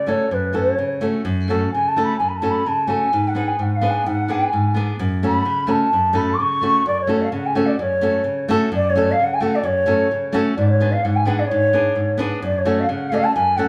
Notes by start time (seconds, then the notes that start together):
Already playing: C#3
0.06 A3 C#4 F#4 A4 C#5
0.31 F#2 B4
0.53 A3 C#4 F#4 A4
0.57 C#5
0.78 C#3
1.01 A3 C#4 F#4 A4
1.25 F#2
1.48 A3 C#4 F#4 A4
1.72 C#3 G#5
1.88 A5
1.96 A3 C#4 F#4 A4
2.04 B5
2.18 F#2 G#5
2.28 B5
2.36 A5
2.42 A3 C#4 F#4 A4
2.50 B5
2.66 C#3 A5
2.87 A3 C#4 F#4 A4 G#5
3.13 G#2
3.28 F#5
3.35 B3 D4 G#4 B4
3.48 G#5
3.59 G#2 F#5
3.76 F5
3.81 B3 D4 G#4 B4
3.89 G#5
4.06 G#2 F#5
4.28 B3 D4 G#4 B4 G#5
4.53 G#2
4.74 B3 D4 G#4 B4
4.99 F#2
5.23 A3 C#4 F#4 A4 B5
5.45 C#3
5.67 A3 C#4 F#4 A4 A5
5.93 F#2
6.13 A3 C#4 F#4 A4 B5
6.34 D6
6.40 C#3 C#6
6.62 A3 C#4 F#4 A4
6.86 F#2 D5
7.01 C#5
7.07 A3 C#4 F#4 A4
7.21 F5
7.32 C#3 F#5
7.46 G#5
7.55 A3 C#4 F#4 A4 F#5
7.66 D5
7.79 F#2 C#5
8.01 A3 C#4 F#4 A4
8.24 C#3
8.48 A3 C#4 F#4 A4
8.72 F#2 D5
8.90 C#5
8.95 A3 C#4 F#4 A4
9.11 F5
9.19 C#3 F#5
9.34 G#5
9.40 A3 C#4 F#4 A4 F#5
9.55 D5
9.63 F#2 C#5
9.86 A3 C#4 F#4 A4
10.11 C#3
10.33 A3 C#4 F#4 A4
10.56 G#2 D5
10.69 C#5
10.80 B3 D4 G#4 B4
10.92 F5
11.03 G#2 F#5
11.16 G#5
11.25 B3 D4 G#4 B4 F#5
11.39 D5
11.46 C#5
11.51 G#2
11.73 B3 D4 G#4 B4
11.95 G#2
12.18 B3 D4 G#4 B4
12.42 F#2 D5
12.58 C#5
12.65 A3 C#4 F#4 A4
12.80 F5
12.88 C#3 F#5
13.10 A3 C#4 F#4 A4 F5
13.14 D5 F5
13.24 A5
13.34 F#2 G#5
13.56 A3 C#4 F#4 A4 F#5